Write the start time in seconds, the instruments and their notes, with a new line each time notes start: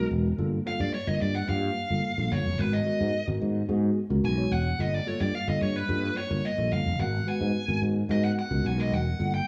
Already playing: tine electric piano G#3 B3 F#4 A#4
0.11 fretless electric bass E1
0.38 fretless electric bass G1, tine electric piano G3 A#3 F4 A4
0.66 tine electric piano G3 A#3 F4 A4, lead electric guitar F5
0.80 fretless electric bass G2, lead electric guitar D5
0.94 lead electric guitar C#5
1.07 fretless electric bass G1, tine electric piano G3 A#3 F4 A#4, lead electric guitar D#5
1.21 fretless electric bass G2, lead electric guitar D5
1.35 lead electric guitar F#5
1.48 fretless electric bass G2, tine electric piano G3 A#3 F4 G4, lead electric guitar F5
1.90 fretless electric bass G1, tine electric piano G3 A#3 F4 A4
2.17 fretless electric bass A#1, tine electric piano G3 A#3 F4 A4
2.32 fretless electric bass G1, lead electric guitar C#5
2.46 fretless electric bass F1
2.58 fretless electric bass G#1, tine electric piano G#3 B3 F#4 A#4, lead electric guitar B4
2.73 lead electric guitar D#5
2.86 tine electric piano G#3 B3 F#4 A#4
3.01 fretless electric bass G#2
3.27 fretless electric bass G#1, tine electric piano G#3 B3 F#4 A#4
3.42 fretless electric bass G#2
3.69 fretless electric bass G#2, tine electric piano G#3 B3 F#4 G#4
4.10 fretless electric bass C#2, tine electric piano G#3 B3 F#4 A#4
4.24 fretless electric bass B1, lead electric guitar G#5
4.37 tine electric piano G#3 B3 F#4 C#5
4.51 fretless electric bass E1, lead electric guitar F#5
4.78 fretless electric bass G1, tine electric piano G3 A#3 F4 A4, lead electric guitar D#5
4.94 lead electric guitar D5
5.06 tine electric piano G3 A#3 F4 A4, lead electric guitar C#5
5.20 fretless electric bass G2, lead electric guitar D5
5.35 lead electric guitar F5
5.47 fretless electric bass G1, tine electric piano G3 A#3 F4 A4, lead electric guitar D#5
5.61 fretless electric bass G2, lead electric guitar C#5
5.76 lead electric guitar B4
5.89 fretless electric bass G2, tine electric piano G3 A#3 F4 A4
6.17 lead electric guitar C#5
6.30 fretless electric bass G1, tine electric piano G3 A#3 F4 A#4
6.45 lead electric guitar D#5
6.57 fretless electric bass A#1, tine electric piano G3 A#3 F4 A4
6.72 fretless electric bass G1, lead electric guitar F5
6.86 fretless electric bass F1
6.99 fretless electric bass G#1, tine electric piano G#3 B3 F#4 A#4, lead electric guitar F#5
7.26 tine electric piano G#3 B3 F#4 B4, lead electric guitar G#5
7.41 fretless electric bass G#2
7.68 fretless electric bass G#1, tine electric piano G#3 B3 F#4 A#4
7.82 fretless electric bass G#2
8.09 fretless electric bass G#2, tine electric piano G#3 B3 F#4 A#4, lead electric guitar D#5
8.25 lead electric guitar F#5
8.39 lead electric guitar F#5
8.50 fretless electric bass C#2, tine electric piano G#3 B3 F#4 A#4
8.65 fretless electric bass B1, lead electric guitar G#5
8.77 tine electric piano G#3 B3 F#4 A#4, lead electric guitar D#5
8.92 fretless electric bass E1, lead electric guitar F#5
9.19 fretless electric bass G1, tine electric piano G3 A#3 F4 A4
9.34 lead electric guitar G5